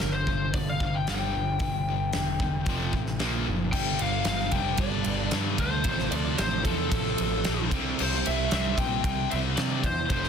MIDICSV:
0, 0, Header, 1, 5, 480
1, 0, Start_track
1, 0, Tempo, 531444
1, 1450, Time_signature, 4, 2, 24, 8
1, 9292, End_track
2, 0, Start_track
2, 0, Title_t, "Lead electric guitar"
2, 0, Program_c, 0, 29
2, 0, Note_on_c, 0, 70, 83
2, 115, Note_off_c, 0, 70, 0
2, 119, Note_on_c, 0, 72, 89
2, 458, Note_off_c, 0, 72, 0
2, 488, Note_on_c, 0, 74, 91
2, 626, Note_off_c, 0, 74, 0
2, 626, Note_on_c, 0, 77, 98
2, 859, Note_on_c, 0, 79, 97
2, 864, Note_off_c, 0, 77, 0
2, 977, Note_off_c, 0, 79, 0
2, 989, Note_on_c, 0, 79, 84
2, 2866, Note_off_c, 0, 79, 0
2, 3363, Note_on_c, 0, 79, 118
2, 3615, Note_off_c, 0, 79, 0
2, 3617, Note_on_c, 0, 77, 88
2, 3862, Note_off_c, 0, 77, 0
2, 3874, Note_on_c, 0, 77, 102
2, 4080, Note_on_c, 0, 79, 92
2, 4110, Note_off_c, 0, 77, 0
2, 4309, Note_off_c, 0, 79, 0
2, 4322, Note_on_c, 0, 74, 80
2, 4773, Note_off_c, 0, 74, 0
2, 5061, Note_on_c, 0, 72, 115
2, 5518, Note_on_c, 0, 74, 109
2, 5550, Note_off_c, 0, 72, 0
2, 5755, Note_on_c, 0, 72, 93
2, 5772, Note_off_c, 0, 74, 0
2, 5998, Note_off_c, 0, 72, 0
2, 6002, Note_on_c, 0, 69, 90
2, 6223, Note_off_c, 0, 69, 0
2, 6234, Note_on_c, 0, 69, 90
2, 6924, Note_off_c, 0, 69, 0
2, 7240, Note_on_c, 0, 72, 97
2, 7465, Note_on_c, 0, 76, 92
2, 7470, Note_off_c, 0, 72, 0
2, 7692, Note_off_c, 0, 76, 0
2, 7703, Note_on_c, 0, 76, 104
2, 7918, Note_off_c, 0, 76, 0
2, 7934, Note_on_c, 0, 79, 107
2, 8161, Note_off_c, 0, 79, 0
2, 8171, Note_on_c, 0, 79, 109
2, 8399, Note_on_c, 0, 76, 92
2, 8415, Note_off_c, 0, 79, 0
2, 8465, Note_off_c, 0, 76, 0
2, 8644, Note_on_c, 0, 74, 96
2, 8889, Note_on_c, 0, 72, 89
2, 8891, Note_off_c, 0, 74, 0
2, 9112, Note_off_c, 0, 72, 0
2, 9123, Note_on_c, 0, 72, 94
2, 9292, Note_off_c, 0, 72, 0
2, 9292, End_track
3, 0, Start_track
3, 0, Title_t, "Distorted electric guitar"
3, 0, Program_c, 1, 30
3, 24, Note_on_c, 1, 43, 69
3, 25, Note_on_c, 1, 50, 80
3, 231, Note_off_c, 1, 43, 0
3, 232, Note_off_c, 1, 50, 0
3, 256, Note_on_c, 1, 43, 72
3, 263, Note_on_c, 1, 50, 77
3, 468, Note_off_c, 1, 43, 0
3, 471, Note_off_c, 1, 50, 0
3, 498, Note_on_c, 1, 50, 75
3, 500, Note_on_c, 1, 43, 80
3, 709, Note_off_c, 1, 50, 0
3, 710, Note_off_c, 1, 43, 0
3, 747, Note_on_c, 1, 43, 65
3, 749, Note_on_c, 1, 50, 77
3, 954, Note_off_c, 1, 43, 0
3, 955, Note_off_c, 1, 50, 0
3, 976, Note_on_c, 1, 43, 89
3, 976, Note_on_c, 1, 50, 87
3, 986, Note_on_c, 1, 55, 99
3, 1198, Note_off_c, 1, 50, 0
3, 1199, Note_off_c, 1, 43, 0
3, 1203, Note_off_c, 1, 55, 0
3, 1225, Note_on_c, 1, 43, 69
3, 1229, Note_on_c, 1, 50, 83
3, 1434, Note_off_c, 1, 43, 0
3, 1436, Note_off_c, 1, 50, 0
3, 1459, Note_on_c, 1, 43, 74
3, 1463, Note_on_c, 1, 50, 87
3, 1671, Note_off_c, 1, 43, 0
3, 1673, Note_off_c, 1, 50, 0
3, 1715, Note_on_c, 1, 43, 61
3, 1718, Note_on_c, 1, 50, 65
3, 1919, Note_off_c, 1, 43, 0
3, 1920, Note_off_c, 1, 50, 0
3, 1951, Note_on_c, 1, 50, 84
3, 1952, Note_on_c, 1, 43, 66
3, 2157, Note_off_c, 1, 50, 0
3, 2158, Note_off_c, 1, 43, 0
3, 2180, Note_on_c, 1, 43, 65
3, 2187, Note_on_c, 1, 50, 81
3, 2392, Note_off_c, 1, 43, 0
3, 2396, Note_off_c, 1, 50, 0
3, 2422, Note_on_c, 1, 41, 88
3, 2424, Note_on_c, 1, 48, 91
3, 2429, Note_on_c, 1, 53, 93
3, 2643, Note_off_c, 1, 41, 0
3, 2644, Note_off_c, 1, 48, 0
3, 2646, Note_off_c, 1, 53, 0
3, 2656, Note_on_c, 1, 48, 75
3, 2657, Note_on_c, 1, 41, 55
3, 2870, Note_off_c, 1, 48, 0
3, 2871, Note_off_c, 1, 41, 0
3, 2886, Note_on_c, 1, 46, 79
3, 2897, Note_on_c, 1, 53, 81
3, 2902, Note_on_c, 1, 58, 95
3, 3115, Note_off_c, 1, 46, 0
3, 3120, Note_off_c, 1, 53, 0
3, 3123, Note_off_c, 1, 58, 0
3, 3136, Note_on_c, 1, 46, 74
3, 3141, Note_on_c, 1, 53, 73
3, 3350, Note_off_c, 1, 46, 0
3, 3353, Note_off_c, 1, 53, 0
3, 3379, Note_on_c, 1, 43, 93
3, 3395, Note_on_c, 1, 50, 92
3, 3406, Note_on_c, 1, 55, 105
3, 4078, Note_off_c, 1, 55, 0
3, 4081, Note_off_c, 1, 43, 0
3, 4089, Note_on_c, 1, 55, 96
3, 4090, Note_off_c, 1, 50, 0
3, 4101, Note_on_c, 1, 50, 83
3, 4119, Note_on_c, 1, 43, 73
3, 4796, Note_off_c, 1, 55, 0
3, 4800, Note_off_c, 1, 43, 0
3, 4802, Note_off_c, 1, 50, 0
3, 4811, Note_on_c, 1, 43, 80
3, 4830, Note_on_c, 1, 50, 85
3, 4846, Note_on_c, 1, 55, 81
3, 5276, Note_off_c, 1, 43, 0
3, 5286, Note_off_c, 1, 50, 0
3, 5294, Note_off_c, 1, 55, 0
3, 5305, Note_on_c, 1, 41, 99
3, 5316, Note_on_c, 1, 48, 113
3, 5335, Note_on_c, 1, 53, 104
3, 6003, Note_off_c, 1, 41, 0
3, 6007, Note_off_c, 1, 53, 0
3, 6008, Note_off_c, 1, 48, 0
3, 6018, Note_on_c, 1, 53, 85
3, 6036, Note_on_c, 1, 48, 88
3, 6051, Note_on_c, 1, 41, 74
3, 6718, Note_off_c, 1, 53, 0
3, 6727, Note_off_c, 1, 48, 0
3, 6728, Note_off_c, 1, 41, 0
3, 6739, Note_on_c, 1, 41, 83
3, 6757, Note_on_c, 1, 48, 77
3, 6767, Note_on_c, 1, 53, 92
3, 6959, Note_off_c, 1, 41, 0
3, 6963, Note_off_c, 1, 48, 0
3, 6973, Note_off_c, 1, 53, 0
3, 6974, Note_on_c, 1, 48, 99
3, 6993, Note_on_c, 1, 55, 108
3, 7004, Note_on_c, 1, 60, 127
3, 7672, Note_off_c, 1, 48, 0
3, 7682, Note_on_c, 1, 48, 86
3, 7685, Note_off_c, 1, 55, 0
3, 7702, Note_on_c, 1, 55, 89
3, 7714, Note_off_c, 1, 60, 0
3, 7718, Note_on_c, 1, 60, 90
3, 8389, Note_off_c, 1, 48, 0
3, 8398, Note_off_c, 1, 55, 0
3, 8402, Note_off_c, 1, 60, 0
3, 8413, Note_on_c, 1, 60, 76
3, 8434, Note_on_c, 1, 55, 78
3, 8444, Note_on_c, 1, 48, 62
3, 8874, Note_off_c, 1, 60, 0
3, 8884, Note_off_c, 1, 55, 0
3, 8889, Note_off_c, 1, 48, 0
3, 9120, Note_on_c, 1, 41, 109
3, 9142, Note_on_c, 1, 48, 99
3, 9154, Note_on_c, 1, 53, 102
3, 9292, Note_off_c, 1, 41, 0
3, 9292, Note_off_c, 1, 48, 0
3, 9292, Note_off_c, 1, 53, 0
3, 9292, End_track
4, 0, Start_track
4, 0, Title_t, "Picked electric bass"
4, 0, Program_c, 2, 34
4, 25, Note_on_c, 2, 31, 94
4, 467, Note_off_c, 2, 31, 0
4, 486, Note_on_c, 2, 31, 79
4, 712, Note_off_c, 2, 31, 0
4, 726, Note_on_c, 2, 31, 90
4, 952, Note_off_c, 2, 31, 0
4, 983, Note_on_c, 2, 31, 81
4, 1202, Note_off_c, 2, 31, 0
4, 1223, Note_on_c, 2, 31, 80
4, 1442, Note_off_c, 2, 31, 0
4, 1447, Note_on_c, 2, 31, 105
4, 1899, Note_off_c, 2, 31, 0
4, 1946, Note_on_c, 2, 28, 100
4, 2390, Note_off_c, 2, 28, 0
4, 2406, Note_on_c, 2, 29, 79
4, 2634, Note_off_c, 2, 29, 0
4, 2650, Note_on_c, 2, 33, 80
4, 2876, Note_off_c, 2, 33, 0
4, 2897, Note_on_c, 2, 34, 74
4, 3120, Note_off_c, 2, 34, 0
4, 3142, Note_on_c, 2, 30, 81
4, 3363, Note_off_c, 2, 30, 0
4, 3368, Note_on_c, 2, 31, 103
4, 3573, Note_off_c, 2, 31, 0
4, 3614, Note_on_c, 2, 31, 100
4, 3816, Note_off_c, 2, 31, 0
4, 3845, Note_on_c, 2, 31, 97
4, 4051, Note_off_c, 2, 31, 0
4, 4082, Note_on_c, 2, 29, 94
4, 4289, Note_off_c, 2, 29, 0
4, 4320, Note_on_c, 2, 31, 95
4, 4528, Note_off_c, 2, 31, 0
4, 4568, Note_on_c, 2, 31, 94
4, 4772, Note_off_c, 2, 31, 0
4, 4822, Note_on_c, 2, 43, 87
4, 5020, Note_off_c, 2, 43, 0
4, 5050, Note_on_c, 2, 38, 87
4, 5253, Note_off_c, 2, 38, 0
4, 5282, Note_on_c, 2, 33, 98
4, 5488, Note_off_c, 2, 33, 0
4, 5519, Note_on_c, 2, 38, 100
4, 5726, Note_off_c, 2, 38, 0
4, 5777, Note_on_c, 2, 33, 106
4, 5976, Note_off_c, 2, 33, 0
4, 6005, Note_on_c, 2, 40, 84
4, 6209, Note_off_c, 2, 40, 0
4, 6244, Note_on_c, 2, 33, 89
4, 6449, Note_off_c, 2, 33, 0
4, 6504, Note_on_c, 2, 33, 97
4, 6700, Note_off_c, 2, 33, 0
4, 6753, Note_on_c, 2, 34, 91
4, 6945, Note_off_c, 2, 34, 0
4, 6964, Note_on_c, 2, 36, 104
4, 7168, Note_off_c, 2, 36, 0
4, 7229, Note_on_c, 2, 36, 102
4, 7422, Note_off_c, 2, 36, 0
4, 7471, Note_on_c, 2, 36, 99
4, 7663, Note_off_c, 2, 36, 0
4, 7698, Note_on_c, 2, 36, 109
4, 7896, Note_off_c, 2, 36, 0
4, 7922, Note_on_c, 2, 34, 93
4, 8126, Note_off_c, 2, 34, 0
4, 8164, Note_on_c, 2, 36, 103
4, 8367, Note_off_c, 2, 36, 0
4, 8425, Note_on_c, 2, 36, 100
4, 8619, Note_off_c, 2, 36, 0
4, 8669, Note_on_c, 2, 48, 82
4, 8861, Note_off_c, 2, 48, 0
4, 8884, Note_on_c, 2, 40, 103
4, 9086, Note_off_c, 2, 40, 0
4, 9120, Note_on_c, 2, 29, 102
4, 9292, Note_off_c, 2, 29, 0
4, 9292, End_track
5, 0, Start_track
5, 0, Title_t, "Drums"
5, 0, Note_on_c, 9, 38, 103
5, 90, Note_off_c, 9, 38, 0
5, 243, Note_on_c, 9, 36, 69
5, 334, Note_off_c, 9, 36, 0
5, 484, Note_on_c, 9, 46, 46
5, 486, Note_on_c, 9, 36, 103
5, 575, Note_off_c, 9, 46, 0
5, 576, Note_off_c, 9, 36, 0
5, 726, Note_on_c, 9, 36, 83
5, 816, Note_off_c, 9, 36, 0
5, 967, Note_on_c, 9, 46, 53
5, 973, Note_on_c, 9, 38, 98
5, 1057, Note_off_c, 9, 46, 0
5, 1063, Note_off_c, 9, 38, 0
5, 1440, Note_on_c, 9, 46, 55
5, 1446, Note_on_c, 9, 36, 107
5, 1531, Note_off_c, 9, 46, 0
5, 1536, Note_off_c, 9, 36, 0
5, 1921, Note_on_c, 9, 46, 56
5, 1927, Note_on_c, 9, 38, 93
5, 2011, Note_off_c, 9, 46, 0
5, 2017, Note_off_c, 9, 38, 0
5, 2166, Note_on_c, 9, 36, 74
5, 2257, Note_off_c, 9, 36, 0
5, 2402, Note_on_c, 9, 46, 54
5, 2407, Note_on_c, 9, 36, 101
5, 2492, Note_off_c, 9, 46, 0
5, 2497, Note_off_c, 9, 36, 0
5, 2646, Note_on_c, 9, 36, 77
5, 2737, Note_off_c, 9, 36, 0
5, 2767, Note_on_c, 9, 38, 29
5, 2858, Note_off_c, 9, 38, 0
5, 2885, Note_on_c, 9, 46, 50
5, 2892, Note_on_c, 9, 38, 101
5, 2976, Note_off_c, 9, 46, 0
5, 2982, Note_off_c, 9, 38, 0
5, 3368, Note_on_c, 9, 36, 100
5, 3370, Note_on_c, 9, 49, 111
5, 3458, Note_off_c, 9, 36, 0
5, 3460, Note_off_c, 9, 49, 0
5, 3605, Note_on_c, 9, 51, 77
5, 3695, Note_off_c, 9, 51, 0
5, 3835, Note_on_c, 9, 51, 92
5, 3841, Note_on_c, 9, 38, 117
5, 3925, Note_off_c, 9, 51, 0
5, 3931, Note_off_c, 9, 38, 0
5, 3968, Note_on_c, 9, 38, 32
5, 4058, Note_off_c, 9, 38, 0
5, 4078, Note_on_c, 9, 51, 63
5, 4083, Note_on_c, 9, 36, 66
5, 4168, Note_off_c, 9, 51, 0
5, 4173, Note_off_c, 9, 36, 0
5, 4312, Note_on_c, 9, 51, 97
5, 4320, Note_on_c, 9, 36, 109
5, 4402, Note_off_c, 9, 51, 0
5, 4411, Note_off_c, 9, 36, 0
5, 4555, Note_on_c, 9, 51, 70
5, 4646, Note_off_c, 9, 51, 0
5, 4797, Note_on_c, 9, 51, 89
5, 4803, Note_on_c, 9, 38, 109
5, 4887, Note_off_c, 9, 51, 0
5, 4893, Note_off_c, 9, 38, 0
5, 5043, Note_on_c, 9, 36, 72
5, 5043, Note_on_c, 9, 51, 73
5, 5133, Note_off_c, 9, 36, 0
5, 5133, Note_off_c, 9, 51, 0
5, 5274, Note_on_c, 9, 51, 99
5, 5282, Note_on_c, 9, 36, 112
5, 5365, Note_off_c, 9, 51, 0
5, 5372, Note_off_c, 9, 36, 0
5, 5410, Note_on_c, 9, 38, 31
5, 5500, Note_off_c, 9, 38, 0
5, 5524, Note_on_c, 9, 51, 80
5, 5615, Note_off_c, 9, 51, 0
5, 5765, Note_on_c, 9, 51, 100
5, 5771, Note_on_c, 9, 38, 120
5, 5855, Note_off_c, 9, 51, 0
5, 5861, Note_off_c, 9, 38, 0
5, 6004, Note_on_c, 9, 36, 75
5, 6006, Note_on_c, 9, 51, 76
5, 6095, Note_off_c, 9, 36, 0
5, 6096, Note_off_c, 9, 51, 0
5, 6246, Note_on_c, 9, 36, 114
5, 6248, Note_on_c, 9, 51, 114
5, 6337, Note_off_c, 9, 36, 0
5, 6339, Note_off_c, 9, 51, 0
5, 6486, Note_on_c, 9, 51, 84
5, 6576, Note_off_c, 9, 51, 0
5, 6723, Note_on_c, 9, 51, 97
5, 6729, Note_on_c, 9, 38, 107
5, 6813, Note_off_c, 9, 51, 0
5, 6820, Note_off_c, 9, 38, 0
5, 6968, Note_on_c, 9, 36, 97
5, 6970, Note_on_c, 9, 51, 79
5, 7058, Note_off_c, 9, 36, 0
5, 7060, Note_off_c, 9, 51, 0
5, 7215, Note_on_c, 9, 49, 112
5, 7305, Note_off_c, 9, 49, 0
5, 7341, Note_on_c, 9, 38, 31
5, 7431, Note_off_c, 9, 38, 0
5, 7457, Note_on_c, 9, 51, 77
5, 7547, Note_off_c, 9, 51, 0
5, 7688, Note_on_c, 9, 51, 86
5, 7694, Note_on_c, 9, 38, 113
5, 7778, Note_off_c, 9, 51, 0
5, 7785, Note_off_c, 9, 38, 0
5, 7927, Note_on_c, 9, 36, 78
5, 7932, Note_on_c, 9, 51, 68
5, 8017, Note_off_c, 9, 36, 0
5, 8022, Note_off_c, 9, 51, 0
5, 8166, Note_on_c, 9, 36, 112
5, 8170, Note_on_c, 9, 51, 101
5, 8257, Note_off_c, 9, 36, 0
5, 8261, Note_off_c, 9, 51, 0
5, 8412, Note_on_c, 9, 51, 68
5, 8502, Note_off_c, 9, 51, 0
5, 8644, Note_on_c, 9, 51, 90
5, 8650, Note_on_c, 9, 38, 107
5, 8734, Note_off_c, 9, 51, 0
5, 8741, Note_off_c, 9, 38, 0
5, 8883, Note_on_c, 9, 36, 79
5, 8886, Note_on_c, 9, 51, 69
5, 8973, Note_off_c, 9, 36, 0
5, 8976, Note_off_c, 9, 51, 0
5, 9121, Note_on_c, 9, 51, 99
5, 9122, Note_on_c, 9, 36, 109
5, 9211, Note_off_c, 9, 51, 0
5, 9213, Note_off_c, 9, 36, 0
5, 9244, Note_on_c, 9, 38, 28
5, 9292, Note_off_c, 9, 38, 0
5, 9292, End_track
0, 0, End_of_file